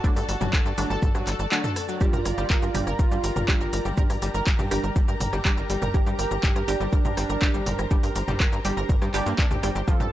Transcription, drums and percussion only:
0.04 kick loud
0.04 shaker medium
0.17 open hi-hat medium
0.17 shaker soft
0.29 open hi-hat loud
0.29 shaker medium
0.41 mid tom loud
0.41 shaker soft
0.53 kick loud
0.53 cross-stick medium
0.53 clap loud
0.53 shaker medium
0.66 shaker soft
0.78 open hi-hat loud
0.78 shaker medium
0.90 shaker soft
1.02 kick loud
1.02 mid tom loud
1.02 shaker medium
1.15 cross-stick medium
1.15 shaker soft
1.27 clap soft
1.27 open hi-hat loud
1.27 shaker medium
1.39 shaker soft
1.52 clap loud
1.52 shaker medium
1.64 mid tom loud
1.64 shaker soft
1.76 cross-stick soft
1.76 open hi-hat loud
1.76 shaker medium
1.89 shaker soft
2.01 kick loud
2.01 shaker medium
2.13 mid tom medium
2.13 shaker soft
2.25 cross-stick soft
2.25 open hi-hat loud
2.25 shaker medium
2.38 shaker soft
2.50 kick loud
2.50 clap loud
2.50 shaker medium
2.62 shaker soft
2.75 mid tom medium
2.75 open hi-hat loud
2.75 shaker medium
2.87 cross-stick soft
2.87 shaker soft
2.99 kick loud
2.99 shaker medium
3.12 shaker soft
3.24 open hi-hat loud
3.24 shaker medium
3.36 mid tom medium
3.36 shaker soft
3.48 kick loud
3.48 cross-stick medium
3.48 clap loud
3.48 shaker medium
3.61 shaker soft
3.73 open hi-hat loud
3.73 shaker medium
3.85 shaker soft
3.98 kick loud
3.98 mid tom medium
3.98 shaker medium
4.10 cross-stick medium
4.10 open hi-hat medium
4.10 shaker soft
4.22 open hi-hat loud
4.22 shaker medium
4.35 shaker soft
4.47 kick loud
4.47 clap loud
4.47 shaker medium
4.59 mid tom medium
4.59 shaker soft
4.71 cross-stick medium
4.71 open hi-hat loud
4.71 shaker medium
4.84 shaker soft
4.96 kick loud
4.96 shaker medium
5.08 shaker soft
5.21 mid tom medium
5.21 open hi-hat loud
5.21 shaker medium
5.33 cross-stick medium
5.33 shaker soft
5.45 kick loud
5.45 clap loud
5.45 shaker medium
5.57 shaker soft
5.70 open hi-hat loud
5.70 shaker medium
5.82 mid tom medium
5.82 shaker soft
5.94 kick loud
5.94 cross-stick medium
5.94 shaker medium
6.07 shaker soft
6.19 open hi-hat loud
6.19 shaker medium
6.31 shaker soft
6.43 kick loud
6.43 clap loud
6.43 mid tom loud
6.43 shaker medium
6.56 cross-stick medium
6.56 shaker soft
6.68 open hi-hat loud
6.68 shaker medium
6.80 shaker soft
6.93 kick loud
6.93 shaker medium
7.05 mid tom medium
7.05 shaker soft
7.17 cross-stick medium
7.17 open hi-hat loud
7.17 shaker medium
7.30 shaker soft
7.42 kick loud
7.42 clap loud
7.42 shaker medium
7.54 shaker soft
7.66 mid tom medium
7.66 open hi-hat loud
7.66 shaker medium
7.79 cross-stick medium
7.79 shaker soft
7.91 kick loud
7.91 shaker medium
8.03 open hi-hat medium
8.03 shaker soft
8.16 open hi-hat loud
8.16 shaker medium
8.28 mid tom medium
8.28 shaker soft
8.40 kick loud
8.40 cross-stick medium
8.40 clap loud
8.40 shaker medium
8.53 shaker soft
8.65 open hi-hat loud
8.65 shaker medium
8.77 shaker soft
8.89 kick loud
8.89 mid tom loud
8.89 shaker medium
9.02 cross-stick medium
9.02 shaker soft
9.14 clap soft
9.14 open hi-hat loud
9.14 shaker medium
9.26 shaker soft
9.39 kick loud
9.39 clap loud
9.39 shaker medium
9.51 mid tom medium
9.51 shaker soft
9.63 cross-stick medium
9.63 open hi-hat loud
9.63 shaker medium
9.76 shaker soft
9.88 kick loud
9.88 shaker medium
10.00 mid tom loud
10.00 shaker soft

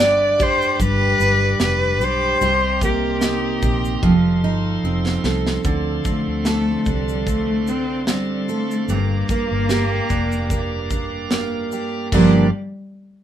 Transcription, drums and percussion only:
0.00 shaker medium
0.40 kick medium
0.40 shaker soft
0.62 shaker medium
0.80 kick medium
0.80 shaker medium
1.20 shaker medium
1.60 snare loud
1.60 shaker medium
2.01 shaker soft
2.41 shaker medium
2.81 kick loud
2.81 shaker medium
3.21 snare loud
3.21 shaker medium
3.62 kick medium
3.62 shaker soft
3.85 shaker soft
4.03 kick medium
5.06 snare medium
5.24 snare loud
5.47 snare loud
5.64 kick loud
5.64 shaker medium
6.05 kick medium
6.05 shaker medium
6.45 snare medium
6.45 shaker medium
6.86 kick medium
6.86 shaker soft
7.09 shaker soft
7.27 kick medium
7.27 shaker medium
7.67 shaker medium
8.07 snare loud
8.07 shaker medium
8.49 shaker soft
8.71 shaker medium
8.89 shaker medium
9.29 kick medium
9.29 shaker medium
9.69 snare loud
9.69 shaker medium
10.10 kick medium
10.10 shaker soft
10.32 shaker soft
10.50 kick medium
10.50 shaker medium
10.91 kick medium
10.91 shaker medium
11.31 snare loud
11.31 shaker medium
11.72 shaker soft
12.12 kick loud
12.12 crash medium

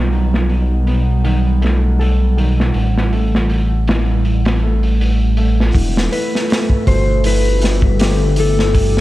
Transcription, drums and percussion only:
0.12 open hi-hat medium
0.34 snare soft
0.50 open hi-hat medium
0.87 open hi-hat medium
1.25 open hi-hat medium
1.62 snare soft
1.62 open hi-hat medium
2.01 open hi-hat medium
2.38 open hi-hat medium
2.60 snare soft
2.74 open hi-hat medium
2.98 snare soft
3.13 open hi-hat medium
3.35 snare soft
3.50 open hi-hat medium
3.87 snare loud
3.87 open hi-hat medium
4.25 open hi-hat medium
4.45 snare medium
4.45 open hi-hat medium
4.83 open hi-hat medium
5.01 open hi-hat medium
5.37 open hi-hat medium
5.60 snare soft
5.75 kick loud
5.75 open hi-hat medium
5.97 snare medium
6.12 open hi-hat medium
6.35 snare soft
6.50 snare loud
6.50 open hi-hat medium
6.70 kick medium
6.87 kick medium
6.87 open hi-hat medium
7.24 open hi-hat medium
7.62 snare soft
7.62 open hi-hat medium
7.82 kick medium
7.99 snare loud
7.99 open hi-hat medium
8.36 open hi-hat medium
8.59 snare soft
8.75 kick loud
8.75 open hi-hat medium
8.97 snare soft

